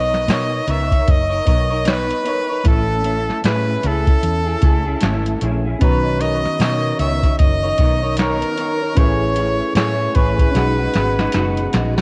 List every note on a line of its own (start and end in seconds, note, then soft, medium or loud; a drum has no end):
0.00 0.29 B1 medium
0.00 0.26 B3 medium
0.00 0.27 D#4 medium
0.00 0.27 A#4 medium
0.00 0.28 C#5 medium
0.00 0.72 D#5 loud
0.14 snare soft
0.27 0.60 B2 medium
0.27 0.66 B3 medium
0.27 0.67 D#4 medium
0.27 0.67 A#4 medium
0.27 0.68 C#5 medium
0.27 snare medium
0.27 closed hi-hat medium
0.67 0.99 C#2 medium
0.67 0.91 B3 medium
0.67 0.91 D#4 medium
0.67 0.91 A#4 medium
0.67 0.89 C#5 medium
0.67 1.12 E5 medium
0.67 closed hi-hat medium
0.90 1.31 D#4 soft
0.90 1.30 A#4 soft
0.90 1.28 C#5 medium
0.90 kick medium
0.90 closed hi-hat soft
1.08 1.39 F#1 medium
1.08 1.91 D#5 loud
1.08 kick medium
1.08 closed hi-hat medium
1.29 1.45 D#4 soft
1.29 1.46 A#4 soft
1.29 1.46 C#5 medium
1.45 2.10 B1 medium
1.45 1.70 B3 medium
1.45 1.70 D#4 medium
1.45 1.70 A#4 medium
1.45 1.68 C#5 medium
1.45 kick medium
1.45 closed hi-hat medium
1.70 1.85 D#4 soft
1.70 1.86 A#4 soft
1.70 1.86 C#5 soft
1.85 2.23 B3 medium
1.85 2.24 D#4 medium
1.85 2.26 C#5 medium
1.85 snare loud
1.85 closed hi-hat medium
1.90 2.67 B4 medium
2.11 closed hi-hat soft
2.24 2.49 B3 medium
2.24 2.49 D#4 medium
2.24 2.49 A#4 medium
2.24 2.47 C#5 medium
2.24 closed hi-hat medium
2.49 2.64 D#4 soft
2.49 2.66 A#4 soft
2.49 2.65 C#5 soft
2.63 3.29 A1 medium
2.63 3.03 A3 medium
2.63 3.04 C#4 medium
2.63 3.04 E4 medium
2.63 kick loud
2.63 closed hi-hat medium
2.68 3.42 A4 medium
3.04 3.43 A3 medium
3.04 3.43 C#4 medium
3.04 3.44 E4 medium
3.04 closed hi-hat medium
3.30 snare soft
3.44 3.76 A2 medium
3.44 3.81 A3 medium
3.44 3.83 C#4 medium
3.44 3.84 E4 medium
3.44 3.84 G#4 medium
3.44 3.89 B4 medium
3.44 snare medium
3.44 closed hi-hat medium
3.83 4.15 C#2 medium
3.83 4.07 A3 medium
3.83 4.07 C#4 medium
3.83 4.07 E4 medium
3.83 4.08 G#4 medium
3.83 closed hi-hat medium
3.87 5.43 A4 medium
4.07 4.47 C#4 soft
4.07 4.46 E4 soft
4.07 kick medium
4.07 closed hi-hat soft
4.23 4.55 E2 medium
4.23 closed hi-hat medium
4.46 4.62 C#4 soft
4.46 4.63 E4 soft
4.46 4.62 G#4 soft
4.62 4.94 C#2 medium
4.62 4.86 A3 medium
4.62 4.86 C#4 soft
4.62 4.86 E4 medium
4.62 4.84 G#4 medium
4.62 kick medium
4.62 closed hi-hat medium
4.85 5.00 C#4 soft
4.85 5.01 E4 medium
4.85 5.02 G#4 medium
5.01 5.34 G#1 medium
5.01 5.40 A3 medium
5.01 5.41 C#4 medium
5.01 5.42 E4 medium
5.01 snare loud
5.01 closed hi-hat medium
5.26 closed hi-hat soft
5.41 5.73 A#1 medium
5.41 5.65 A3 medium
5.41 5.66 C#4 medium
5.41 5.65 E4 medium
5.41 5.63 G#4 medium
5.41 closed hi-hat medium
5.65 5.80 C#4 soft
5.65 5.81 E4 soft
5.65 5.81 G#4 soft
5.79 6.44 B1 medium
5.79 8.93 D#3 medium
5.79 6.18 B3 medium
5.79 8.92 C#4 medium
5.79 6.19 D#4 medium
5.79 8.93 F#4 medium
5.79 6.23 B4 medium
5.79 6.21 C#5 medium
5.79 kick loud
5.79 closed hi-hat medium
5.84 8.94 A#5 medium
6.19 6.58 B3 medium
6.19 6.58 D#4 medium
6.19 6.59 A#4 medium
6.19 6.60 C#5 medium
6.19 6.99 D#5 loud
6.19 closed hi-hat medium
6.45 snare soft
6.59 6.91 B2 medium
6.59 6.97 B3 medium
6.59 6.98 D#4 medium
6.59 6.99 A#4 medium
6.59 6.99 C#5 medium
6.59 snare loud
6.59 closed hi-hat medium
6.98 7.31 C#2 medium
6.98 7.22 B3 medium
6.98 7.23 D#4 medium
6.98 7.22 A#4 medium
6.98 7.21 C#5 medium
6.98 7.36 E5 loud
6.98 closed hi-hat medium
7.22 7.63 D#4 soft
7.22 7.63 A#4 soft
7.22 7.61 C#5 medium
7.22 kick medium
7.22 closed hi-hat soft
7.39 7.71 F#1 medium
7.39 8.14 D#5 loud
7.39 kick medium
7.39 closed hi-hat medium
7.62 7.78 D#4 soft
7.62 7.79 A#4 soft
7.62 7.78 C#5 medium
7.78 8.42 B1 medium
7.78 8.02 B3 medium
7.78 8.03 D#4 medium
7.78 8.02 A#4 medium
7.78 8.01 C#5 medium
7.78 kick medium
7.78 closed hi-hat medium
8.02 8.18 D#4 soft
8.02 8.18 A#4 soft
8.02 8.18 C#5 medium
8.17 8.57 B3 medium
8.17 8.58 D#4 medium
8.17 8.99 A#4 medium
8.17 8.58 A#4 medium
8.17 8.59 C#5 medium
8.17 snare loud
8.17 closed hi-hat medium
8.42 closed hi-hat soft
8.58 8.81 B3 medium
8.58 8.82 D#4 medium
8.58 8.82 A#4 medium
8.58 8.80 C#5 medium
8.58 closed hi-hat medium
8.81 8.97 D#4 soft
8.81 8.98 A#4 soft
8.81 8.97 C#5 soft
8.95 9.60 A1 loud
8.95 9.35 A3 medium
8.95 10.50 C#4 medium
8.95 10.51 E4 medium
8.95 9.36 E4 medium
8.95 10.52 G#4 medium
8.95 9.37 G#4 medium
8.95 9.76 C#5 loud
8.95 9.37 C#5 medium
8.95 kick loud
8.95 closed hi-hat medium
9.00 10.53 B4 medium
9.36 9.74 A3 medium
9.36 9.74 E4 medium
9.36 9.75 G#4 medium
9.36 9.76 C#5 medium
9.36 closed hi-hat medium
9.75 10.07 A2 medium
9.75 10.13 A3 medium
9.75 10.15 E4 medium
9.75 10.15 G#4 medium
9.75 10.17 C#5 medium
9.75 10.16 C#5 medium
9.75 snare loud
9.75 closed hi-hat medium
10.15 10.47 A1 medium
10.15 10.39 A3 medium
10.15 10.39 E4 medium
10.15 10.39 G#4 medium
10.15 11.73 B4 medium
10.15 10.37 C#5 medium
10.15 kick medium
10.15 closed hi-hat medium
10.38 10.56 E4 soft
10.38 10.55 G#4 soft
10.38 10.54 C#5 soft
10.38 kick medium
10.38 closed hi-hat soft
10.51 10.86 B1 medium
10.51 10.78 B2 medium
10.51 12.01 C#4 medium
10.51 12.01 D#4 medium
10.51 12.01 F#4 medium
10.51 closed hi-hat medium
10.55 10.79 G#3 medium
10.55 10.78 D#4 medium
10.55 10.77 F#4 medium
10.55 12.01 G#4 medium
10.55 snare soft
10.78 10.95 G#3 soft
10.78 10.95 D#4 soft
10.78 10.94 F#4 medium
10.94 11.26 G#1 medium
10.94 11.18 B2 medium
10.94 11.19 G#3 medium
10.94 11.18 D#4 medium
10.94 11.17 F#4 medium
10.94 snare medium
10.94 closed hi-hat medium
11.18 11.33 G#3 soft
11.18 11.34 D#4 medium
11.18 11.34 F#4 medium
11.18 snare medium
11.32 11.66 F#1 medium
11.32 11.71 B2 medium
11.32 11.72 G#3 medium
11.32 11.74 D#4 medium
11.32 11.74 F#4 medium
11.32 snare medium
11.32 closed hi-hat medium
11.57 closed hi-hat soft
11.73 12.01 A#1 medium
11.73 11.97 B2 medium
11.73 11.97 G#3 medium
11.73 11.97 D#4 medium
11.73 11.95 F#4 medium
11.73 snare medium
11.73 closed hi-hat medium
11.97 12.01 D#4 soft
11.97 12.01 F#4 medium
11.97 snare medium